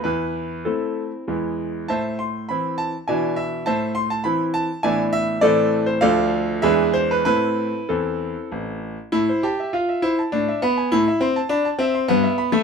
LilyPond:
\new Staff \with { instrumentName = "Grand piano" } { \time 3/4 \key a \minor \tempo 4 = 100 << { <e' b'>4 <c' e' a'>4 r4 | <c'' e'' a''>8 c'''8 b''8 a''8 <d'' e'' gis''>8 e''8 | <c'' e'' a''>8 c'''16 a''16 b''8 a''8 <d'' e'' gis''>8 e''8 | <a' d''>8. c''16 <a' d'' f''>4 <gis' b' e''>8 c''16 b'16 |
<e' b'>4 <c' e' a'>4. r8 | e'8 g'8 f'8 e'8 d'8 b8 | e'8 c'8 d'8 c'8 b8. a16 | } \\ { e,4 a4 <e, gis b e'>4 | a,4 <e c' e'>4 <b, e d' e'>4 | a,4 <e c' e'>4 <a, e b d'>4 | <a, e a c'>4 <d, f a d'>4 <e, e gis d'>4 |
<a, a c'>4 e,4 a,,4 | a,16 c''16 a''16 e''16 f''16 e''16 c''16 a''16 a,16 e''16 b''16 gis''16 | a,16 e''16 c'''16 a''16 b''16 a''16 e''16 c'''16 g,16 e''16 b''16 e''16 | } >> }